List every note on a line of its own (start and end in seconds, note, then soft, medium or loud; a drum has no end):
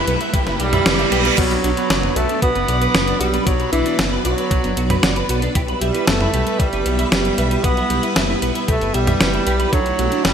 0.00 1.34 G3 medium
0.00 1.34 E4 medium
0.00 0.59 B4 loud
0.00 1.34 E5 medium
0.00 riser medium
0.07 0.17 B1 loud
0.07 0.15 B3 medium
0.07 0.17 B4 loud
0.07 closed hi-hat medium
0.21 0.28 E4 medium
0.21 closed hi-hat medium
0.34 0.43 B1 medium
0.34 0.41 G4 medium
0.34 0.40 B4 medium
0.34 kick loud
0.34 closed hi-hat medium
0.34 reverse cymbal medium
0.46 0.56 F#1 medium
0.46 0.53 E4 medium
0.46 0.58 B4 medium
0.46 snare soft
0.46 closed hi-hat soft
0.59 0.78 B1 medium
0.59 1.39 G3 loud
0.59 0.64 G4 medium
0.59 closed hi-hat medium
0.73 0.80 E4 loud
0.73 0.77 E5 loud
0.73 closed hi-hat medium
0.73 mid tom medium
0.86 1.05 F#1 loud
0.86 0.93 B3 medium
0.86 0.96 B4 medium
0.86 snare loud
0.86 closed hi-hat medium
0.99 1.07 E4 medium
0.99 closed hi-hat soft
1.12 1.31 B1 loud
1.12 1.20 G4 medium
1.12 1.22 B4 loud
1.12 closed hi-hat medium
1.25 1.29 E4 medium
1.25 1.36 B4 medium
1.25 closed hi-hat medium
1.38 1.57 B1 loud
1.38 2.18 F#3 loud
1.38 5.51 F#3 medium
1.38 5.51 B3 medium
1.38 1.49 B3 medium
1.38 1.45 B3 medium
1.38 5.51 D4 medium
1.38 2.12 F#4 loud
1.38 9.69 B4 medium
1.38 5.51 D5 medium
1.38 kick loud
1.38 closed hi-hat medium
1.38 crash loud
1.51 1.59 D4 medium
1.51 closed hi-hat soft
1.64 1.73 B1 loud
1.64 1.71 D4 loud
1.64 1.69 F#4 medium
1.64 closed hi-hat medium
1.77 1.87 B3 medium
1.77 1.89 B4 medium
1.77 closed hi-hat medium
1.90 2.09 F#1 loud
1.90 1.98 D5 loud
1.90 snare loud
1.90 closed hi-hat medium
2.03 2.13 B3 loud
2.03 2.15 B4 medium
2.03 mid tom medium
2.16 2.26 B1 loud
2.16 2.41 A3 loud
2.16 2.28 B3 medium
2.16 2.26 F#4 loud
2.16 2.40 A4 loud
2.16 closed hi-hat medium
2.29 2.37 D4 medium
2.29 closed hi-hat medium
2.42 2.52 B1 medium
2.42 3.22 B3 loud
2.42 2.47 F#4 medium
2.42 2.49 F#4 medium
2.42 3.17 B4 loud
2.42 kick loud
2.42 closed hi-hat medium
2.55 2.65 F#1 medium
2.55 2.62 B3 medium
2.55 2.67 B4 medium
2.55 closed hi-hat soft
2.68 2.87 B1 loud
2.68 2.76 D5 loud
2.68 closed hi-hat medium
2.81 2.85 B4 loud
2.81 2.93 B4 medium
2.81 closed hi-hat medium
2.94 3.13 F#1 loud
2.94 3.06 B3 medium
2.94 3.04 F#4 medium
2.94 snare loud
2.94 closed hi-hat medium
3.07 3.15 D4 medium
3.07 closed hi-hat soft
3.20 3.39 B1 loud
3.20 3.46 G3 loud
3.20 3.30 F#4 loud
3.20 3.25 F#4 medium
3.20 3.45 G4 loud
3.20 closed hi-hat medium
3.34 3.38 B3 medium
3.34 3.45 B4 medium
3.34 closed hi-hat medium
3.46 3.66 B1 loud
3.46 3.71 F#3 medium
3.46 3.53 B3 medium
3.46 3.71 F#4 loud
3.46 3.54 D5 loud
3.46 kick loud
3.46 closed hi-hat medium
3.60 3.71 B4 medium
3.60 closed hi-hat soft
3.72 3.82 B1 medium
3.72 4.10 E3 loud
3.72 3.84 B3 medium
3.72 3.79 D4 loud
3.72 4.21 E4 medium
3.72 closed hi-hat medium
3.86 3.96 B3 medium
3.86 3.93 D4 medium
3.86 closed hi-hat medium
3.99 4.18 F#1 loud
3.99 4.03 F#4 medium
3.99 snare loud
3.99 closed hi-hat medium
4.12 4.22 B3 loud
4.12 4.23 B4 medium
4.25 4.34 B1 loud
4.25 5.25 F#3 loud
4.25 4.35 F#4 loud
4.25 5.25 F#4 medium
4.25 4.33 D5 loud
4.25 closed hi-hat medium
4.38 4.49 B4 medium
4.38 closed hi-hat medium
4.51 4.60 B1 medium
4.51 4.63 B3 medium
4.51 4.57 F#4 medium
4.51 kick loud
4.51 closed hi-hat medium
4.64 4.73 F#1 medium
4.64 4.71 B3 medium
4.64 4.72 D4 medium
4.64 closed hi-hat soft
4.77 4.96 B1 loud
4.77 4.82 F#4 medium
4.77 closed hi-hat medium
4.90 4.94 B4 loud
4.90 5.02 B4 medium
4.90 closed hi-hat medium
4.90 mid tom medium
5.03 5.22 F#1 loud
5.03 5.13 F#4 medium
5.03 5.11 D5 loud
5.03 snare loud
5.03 closed hi-hat medium
5.16 5.28 B4 medium
5.16 closed hi-hat soft
5.29 5.48 B1 loud
5.29 5.41 B3 medium
5.29 5.39 F#4 loud
5.29 closed hi-hat medium
5.42 5.46 B3 medium
5.42 5.50 D4 medium
5.42 closed hi-hat medium
5.55 5.74 B1 loud
5.55 9.69 G3 medium
5.55 9.69 B3 medium
5.55 5.62 E4 medium
5.55 10.34 E4 medium
5.55 5.60 G4 medium
5.55 9.69 E5 medium
5.55 kick loud
5.55 closed hi-hat medium
5.68 5.80 B4 medium
5.68 closed hi-hat soft
5.81 5.91 B1 medium
5.81 6.09 G3 medium
5.81 6.06 G4 medium
5.81 5.88 G4 loud
5.81 5.89 E5 loud
5.81 closed hi-hat medium
5.95 6.04 E4 medium
5.95 6.06 B4 medium
5.95 closed hi-hat medium
6.07 6.26 F#1 loud
6.07 6.61 A3 loud
6.07 6.19 B3 medium
6.07 6.56 A4 medium
6.07 snare loud
6.07 closed hi-hat medium
6.21 6.28 E4 medium
6.21 6.31 E4 loud
6.21 mid tom medium
6.33 6.43 B1 loud
6.33 6.38 G4 medium
6.33 6.44 B4 loud
6.33 closed hi-hat medium
6.47 6.58 B4 medium
6.47 closed hi-hat medium
6.59 6.69 B1 medium
6.59 7.11 G3 loud
6.59 7.08 G4 medium
6.59 6.66 B4 medium
6.59 6.67 E5 loud
6.59 kick loud
6.59 closed hi-hat medium
6.73 6.82 F#1 loud
6.73 6.79 E4 medium
6.73 6.84 B4 medium
6.73 closed hi-hat soft
6.86 7.05 B1 medium
6.86 6.97 B3 medium
6.86 closed hi-hat medium
6.99 7.07 E4 medium
6.99 7.03 E5 loud
6.99 closed hi-hat medium
7.11 7.31 F#1 medium
7.11 7.66 G3 loud
7.11 7.60 G4 medium
7.11 7.17 G4 medium
7.11 7.22 B4 medium
7.11 snare loud
7.11 closed hi-hat medium
7.25 7.37 B4 medium
7.25 closed hi-hat soft
7.38 7.57 B1 loud
7.38 7.48 B4 loud
7.38 7.46 E5 loud
7.38 closed hi-hat medium
7.51 7.55 E4 medium
7.51 7.63 B4 medium
7.51 closed hi-hat medium
7.64 7.83 B1 loud
7.64 7.76 B3 medium
7.64 8.42 B3 loud
7.64 7.71 E4 medium
7.64 8.38 B4 loud
7.64 kick loud
7.64 closed hi-hat medium
7.77 7.85 E4 medium
7.77 closed hi-hat soft
7.90 8.00 B1 loud
7.90 7.95 G4 medium
7.90 7.97 G4 loud
7.90 closed hi-hat medium
8.03 8.13 E4 medium
8.03 8.15 B4 medium
8.03 closed hi-hat medium
8.16 8.35 F#1 loud
8.16 8.24 E5 loud
8.16 snare loud
8.16 closed hi-hat medium
8.29 8.39 E4 loud
8.29 8.41 B4 medium
8.42 8.52 B1 loud
8.42 8.54 B3 medium
8.42 8.52 B4 loud
8.42 closed hi-hat medium
8.55 8.63 E4 medium
8.55 closed hi-hat medium
8.68 8.78 B1 loud
8.68 8.96 A3 loud
8.68 8.73 G4 medium
8.68 8.93 A4 medium
8.68 8.75 B4 medium
8.68 kick loud
8.68 closed hi-hat medium
8.81 8.91 F#1 medium
8.81 8.88 E4 medium
8.81 8.93 B4 medium
8.81 closed hi-hat soft
8.94 9.13 B1 loud
8.94 9.72 G3 loud
8.94 9.69 G4 loud
8.94 9.02 E5 loud
8.94 closed hi-hat medium
9.07 9.19 B4 medium
9.07 9.12 E5 loud
9.07 closed hi-hat medium
9.07 mid tom medium
9.20 9.39 F#1 loud
9.20 9.32 B3 medium
9.20 9.31 B4 medium
9.20 snare loud
9.20 closed hi-hat medium
9.33 9.41 E4 medium
9.33 closed hi-hat soft
9.46 9.66 B1 loud
9.46 9.51 G4 medium
9.46 9.57 B4 loud
9.46 closed hi-hat medium
9.60 9.64 E4 medium
9.60 9.71 B4 medium
9.60 closed hi-hat medium
9.72 9.92 B1 loud
9.72 10.26 F#3 loud
9.72 10.34 A3 medium
9.72 10.34 D4 medium
9.72 9.79 D4 medium
9.72 10.21 F#4 loud
9.72 10.34 F#4 medium
9.72 9.80 A4 loud
9.72 10.34 D5 medium
9.72 kick loud
9.72 closed hi-hat medium
9.86 9.97 F#4 medium
9.86 closed hi-hat soft
9.99 10.08 B1 medium
9.99 10.10 A3 medium
9.99 10.05 F#4 loud
9.99 closed hi-hat medium
10.12 10.19 D4 medium
10.12 10.22 D4 medium
10.12 closed hi-hat soft
10.24 10.34 F#1 loud
10.24 10.34 G3 loud
10.24 10.29 E4 medium
10.24 10.34 G4 loud
10.24 snare loud
10.24 closed hi-hat medium